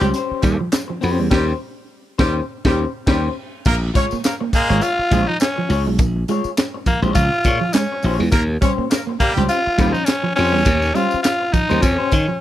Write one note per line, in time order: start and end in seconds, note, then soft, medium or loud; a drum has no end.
0.01 0.12 C#2 medium
0.01 0.11 G3 medium
0.01 0.12 C#4 medium
0.01 0.14 G4 medium
0.01 0.14 C5 medium
0.01 tambourine soft
0.14 0.41 C#4 medium
0.14 0.42 G4 medium
0.14 0.42 C5 medium
0.14 muted clean electric guitar stroke soft
0.14 closed hi-hat medium
0.14 tambourine medium
0.31 muted slap bass stroke soft
0.42 0.57 D#2 loud
0.42 0.56 G3 medium
0.42 0.55 G3 medium
0.42 0.56 G4 medium
0.42 muted clean electric guitar stroke soft
0.42 kick medium
0.42 closed hi-hat medium
0.42 tambourine medium
0.59 0.69 F3 medium
0.59 muted clean electric guitar stroke medium
0.72 muted clean electric guitar stroke soft
0.72 snare loud
0.72 clap medium
0.72 closed hi-hat loud
0.72 tambourine loud
0.88 0.98 F3 medium
0.88 muted clean electric guitar stroke soft
1.01 1.19 F2 medium
1.01 1.22 C#4 medium
1.01 1.18 G4 loud
1.01 1.17 C5 loud
1.01 muted clean electric guitar stroke soft
1.01 open hi-hat medium
1.01 tambourine soft
1.18 1.29 E2 medium
1.18 1.28 G3 medium
1.18 muted clean electric guitar stroke soft
1.31 1.52 D#2 loud
1.31 1.46 G3 medium
1.31 1.51 C#4 loud
1.31 1.46 G4 loud
1.31 1.52 G4 loud
1.31 1.52 C5 loud
1.31 kick loud
1.31 snare loud
1.31 crash medium
2.19 2.40 D#2 medium
2.19 2.35 G3 loud
2.19 2.40 C#4 loud
2.19 2.34 G4 loud
2.19 2.40 G4 loud
2.19 2.39 C5 loud
2.19 kick loud
2.19 snare loud
2.65 2.84 D#2 loud
2.65 2.79 G3 loud
2.65 2.84 C#4 loud
2.65 2.84 G4 loud
2.65 2.80 G4 loud
2.65 2.85 C5 loud
2.65 kick loud
2.65 snare loud
3.07 3.28 D#2 loud
3.07 3.22 G3 medium
3.07 3.28 C#4 loud
3.07 3.22 G4 medium
3.07 3.28 G4 loud
3.07 3.29 C5 loud
3.07 kick loud
3.07 snare loud
3.07 crash medium
3.65 3.89 A#1 loud
3.65 3.76 A#3 loud
3.65 3.76 A#4 loud
3.65 kick loud
3.65 crash medium
3.65 tambourine medium
3.82 muted clean electric guitar stroke soft
3.94 4.06 G#3 medium
3.94 4.06 C#4 medium
3.94 4.14 F4 medium
3.94 4.15 G#4 medium
3.94 4.05 C#5 loud
3.94 4.15 C#5 medium
3.94 kick loud
3.94 closed hi-hat medium
3.94 tambourine soft
4.11 4.21 A#3 medium
4.11 muted slap bass stroke medium
4.11 tambourine soft
4.24 4.34 A#3 medium
4.24 4.34 A#4 medium
4.24 muted clean electric guitar stroke soft
4.24 snare medium
4.24 clap medium
4.24 closed hi-hat medium
4.24 tambourine loud
4.41 4.49 A#3 medium
4.41 muted clean electric guitar stroke medium
4.53 4.77 G#3 loud
4.53 4.84 A#3 loud
4.53 4.77 G#4 loud
4.53 muted slap bass stroke soft
4.53 muted clean electric guitar stroke soft
4.53 kick loud
4.53 closed hi-hat medium
4.53 tambourine medium
4.70 4.80 G#1 medium
4.70 4.79 G#3 medium
4.70 4.88 F4 medium
4.70 4.87 G#4 medium
4.70 4.87 C#5 medium
4.70 tambourine soft
4.81 5.29 F4 loud
4.81 muted clean electric guitar stroke soft
4.81 closed hi-hat medium
4.81 tambourine medium
4.99 muted clean electric guitar stroke soft
4.99 muted slap bass stroke soft
5.11 5.25 A#1 medium
5.11 5.21 G#3 medium
5.11 5.23 G#3 medium
5.11 5.32 F4 medium
5.11 5.21 G#4 medium
5.11 5.27 G#4 medium
5.11 5.26 C#5 medium
5.11 kick medium
5.11 closed hi-hat medium
5.11 tambourine medium
5.27 5.37 F3 medium
5.27 5.40 D#4 loud
5.27 muted clean electric guitar stroke medium
5.40 5.83 C#4 medium
5.40 muted clean electric guitar stroke medium
5.40 snare loud
5.40 clap loud
5.40 closed hi-hat loud
5.40 tambourine loud
5.56 5.67 F3 medium
5.56 muted clean electric guitar stroke medium
5.69 5.87 C#2 loud
5.69 5.89 F4 medium
5.69 5.87 G#4 medium
5.69 5.85 C#5 medium
5.69 open hi-hat medium
5.69 tambourine medium
5.87 5.99 B1 medium
5.87 5.96 G#3 medium
5.87 muted clean electric guitar stroke soft
5.99 6.23 A#1 loud
5.99 6.11 A#3 medium
5.99 kick loud
5.99 closed hi-hat medium
5.99 tambourine medium
6.16 muted clean electric guitar stroke soft
6.28 6.40 G#3 medium
6.28 6.48 F4 medium
6.28 6.49 G#4 loud
6.28 6.49 C#5 loud
6.28 closed hi-hat medium
6.28 tambourine medium
6.44 muted slap bass stroke soft
6.44 tambourine soft
6.57 muted clean electric guitar stroke soft
6.57 snare loud
6.57 clap medium
6.57 closed hi-hat medium
6.57 tambourine loud
6.74 muted clean electric guitar stroke medium
6.86 6.98 F3 medium
6.86 7.00 A#3 loud
6.86 muted slap bass stroke soft
6.86 kick medium
6.86 closed hi-hat medium
6.86 tambourine medium
7.02 7.13 A#1 medium
7.02 7.12 G#3 medium
7.02 7.22 F4 medium
7.02 7.22 G#4 medium
7.02 7.21 C#5 medium
7.02 tambourine soft
7.15 7.29 C#2 medium
7.15 7.27 F3 medium
7.15 7.75 F4 loud
7.15 kick medium
7.15 closed hi-hat medium
7.15 tambourine medium
7.32 muted clean electric guitar stroke soft
7.44 7.58 A#2 loud
7.44 7.65 F4 medium
7.44 7.63 G#4 medium
7.44 7.62 C#5 medium
7.44 muted clean electric guitar stroke soft
7.44 kick loud
7.44 closed hi-hat medium
7.44 tambourine medium
7.61 7.70 F3 medium
7.61 muted clean electric guitar stroke soft
7.73 7.85 G#3 medium
7.73 8.19 C#4 medium
7.73 muted clean electric guitar stroke soft
7.73 snare loud
7.73 clap medium
7.73 closed hi-hat loud
7.73 tambourine loud
7.92 muted clean electric guitar stroke soft
8.03 8.17 A#1 medium
8.03 8.25 F4 medium
8.03 8.21 G#4 medium
8.03 8.20 C#5 medium
8.03 muted clean electric guitar stroke soft
8.03 open hi-hat medium
8.03 tambourine medium
8.19 8.30 E2 loud
8.19 8.28 G#3 medium
8.19 muted clean electric guitar stroke soft
8.32 8.56 D#2 loud
8.32 8.42 A#3 loud
8.32 8.42 A#4 loud
8.32 kick loud
8.32 closed hi-hat medium
8.32 tambourine medium
8.49 muted clean electric guitar stroke soft
8.61 8.73 G3 medium
8.61 8.71 C#4 medium
8.61 8.82 C#4 loud
8.61 8.83 G4 medium
8.61 8.71 C#5 medium
8.61 kick loud
8.61 closed hi-hat medium
8.61 tambourine medium
8.65 8.83 C5 loud
8.78 8.87 A#3 medium
8.78 muted slap bass stroke medium
8.90 9.00 A#3 medium
8.90 9.01 A#4 medium
8.90 muted clean electric guitar stroke soft
8.90 snare loud
8.90 clap medium
8.90 closed hi-hat medium
8.90 tambourine loud
9.07 9.16 A#3 medium
9.07 muted clean electric guitar stroke medium
9.20 9.44 G3 loud
9.20 9.33 A#3 loud
9.20 9.43 G4 loud
9.20 muted clean electric guitar stroke soft
9.20 muted slap bass stroke medium
9.20 kick medium
9.20 closed hi-hat medium
9.20 tambourine medium
9.36 9.47 C#2 medium
9.36 9.45 G3 medium
9.36 9.55 C#4 medium
9.36 9.55 G4 medium
9.36 9.55 C5 medium
9.36 tambourine soft
9.49 9.94 F4 loud
9.49 muted clean electric guitar stroke soft
9.49 closed hi-hat medium
9.49 tambourine medium
9.66 muted clean electric guitar stroke soft
9.66 muted slap bass stroke soft
9.78 9.92 D#2 medium
9.78 9.89 G3 medium
9.78 9.92 G3 medium
9.78 9.99 C#4 medium
9.78 9.95 G4 medium
9.78 9.92 G4 medium
9.78 9.94 C5 loud
9.78 kick medium
9.78 closed hi-hat medium
9.78 tambourine medium
9.92 10.03 F3 medium
9.92 10.06 D#4 loud
9.92 muted clean electric guitar stroke medium
9.92 tambourine soft
10.05 10.35 C#4 loud
10.05 muted clean electric guitar stroke medium
10.05 snare loud
10.05 clap medium
10.05 closed hi-hat loud
10.05 tambourine loud
10.23 10.32 F3 medium
10.23 muted clean electric guitar stroke soft
10.36 10.55 F2 loud
10.36 10.96 C#4 loud
10.36 10.57 C#4 medium
10.36 10.54 G4 medium
10.36 10.52 C5 medium
10.36 muted clean electric guitar stroke soft
10.36 open hi-hat medium
10.36 tambourine soft
10.53 10.65 E2 loud
10.53 10.62 G3 medium
10.53 muted clean electric guitar stroke soft
10.65 10.90 D#2 loud
10.65 10.77 A#3 medium
10.65 kick loud
10.65 closed hi-hat medium
10.65 tambourine medium
10.82 muted clean electric guitar stroke soft
10.82 tambourine soft
10.94 11.06 G3 medium
10.94 11.15 C#4 medium
10.94 11.22 F4 loud
10.94 11.15 G4 medium
10.94 11.16 C5 medium
10.94 closed hi-hat medium
10.94 tambourine soft
11.11 muted slap bass stroke medium
11.11 tambourine soft
11.22 11.54 F4 loud
11.22 muted clean electric guitar stroke soft
11.22 snare loud
11.22 clap medium
11.22 closed hi-hat medium
11.22 tambourine loud
11.40 muted clean electric guitar stroke soft
11.53 11.65 F3 medium
11.53 11.83 D#4 loud
11.53 muted slap bass stroke soft
11.53 kick medium
11.53 closed hi-hat medium
11.53 tambourine medium
11.69 11.81 D#2 medium
11.69 11.78 G3 medium
11.69 11.82 C#4 medium
11.69 11.83 G4 medium
11.69 11.84 C5 medium
11.69 tambourine soft
11.82 11.96 F2 loud
11.82 11.94 F3 medium
11.82 12.41 C#4 medium
11.82 muted clean electric guitar stroke soft
11.82 kick loud
11.82 closed hi-hat loud
11.82 tambourine medium
11.98 12.11 C#4 medium
11.98 12.11 G4 medium
11.98 12.12 C5 medium
12.12 12.26 D#3 loud
12.12 muted clean electric guitar stroke soft
12.12 kick medium
12.12 closed hi-hat medium
12.12 tambourine medium
12.28 12.37 F3 medium
12.28 muted clean electric guitar stroke soft